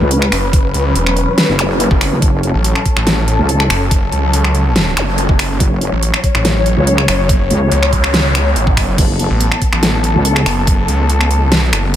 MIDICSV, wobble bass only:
0, 0, Header, 1, 2, 480
1, 0, Start_track
1, 0, Key_signature, 3, "minor"
1, 0, Tempo, 422535
1, 604, Time_signature, 4, 2, 24, 8
1, 13588, End_track
2, 0, Start_track
2, 0, Title_t, "Wobble bass"
2, 0, Program_c, 0, 39
2, 9, Note_on_c, 0, 37, 100
2, 346, Note_off_c, 0, 37, 0
2, 1690, Note_on_c, 0, 30, 102
2, 2150, Note_off_c, 0, 30, 0
2, 2409, Note_on_c, 0, 30, 99
2, 2506, Note_off_c, 0, 30, 0
2, 2524, Note_on_c, 0, 30, 99
2, 2869, Note_off_c, 0, 30, 0
2, 3850, Note_on_c, 0, 37, 97
2, 4186, Note_off_c, 0, 37, 0
2, 6365, Note_on_c, 0, 30, 100
2, 6710, Note_off_c, 0, 30, 0
2, 7690, Note_on_c, 0, 37, 102
2, 8026, Note_off_c, 0, 37, 0
2, 8525, Note_on_c, 0, 37, 100
2, 8746, Note_off_c, 0, 37, 0
2, 10204, Note_on_c, 0, 30, 98
2, 10549, Note_off_c, 0, 30, 0
2, 11530, Note_on_c, 0, 37, 99
2, 11866, Note_off_c, 0, 37, 0
2, 13588, End_track
0, 0, End_of_file